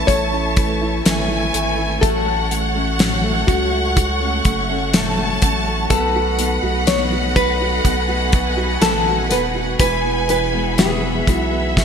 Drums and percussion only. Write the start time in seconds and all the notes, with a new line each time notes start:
0.08 kick, closed hi-hat
0.57 kick, closed hi-hat
1.06 snare, closed hi-hat
1.54 closed hi-hat
2.03 kick, closed hi-hat
2.51 closed hi-hat
2.99 snare, closed hi-hat
3.48 kick, closed hi-hat
3.97 kick, closed hi-hat
4.45 kick, closed hi-hat
4.93 snare, closed hi-hat
5.42 kick, closed hi-hat
5.90 kick, closed hi-hat
6.39 closed hi-hat
6.87 snare, closed hi-hat
7.36 kick, closed hi-hat
7.85 kick, closed hi-hat
8.32 kick, closed hi-hat
8.82 snare, closed hi-hat
9.31 snare, closed hi-hat
9.79 kick, closed hi-hat
10.29 closed hi-hat
10.78 snare, closed hi-hat
11.27 kick, closed hi-hat
11.77 kick, snare